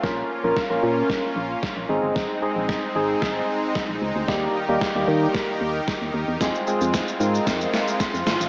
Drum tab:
SH |----------------|----------------|----------------|xxxxxxxxxxxxxxxx|
SD |o---o---o---o---|o---o---o---o---|o---o---o---o---|o---o---o-o-o-o-|
BD |o---o---o---o---|o---o---o---o---|o---o---o---o---|o---o---o---o---|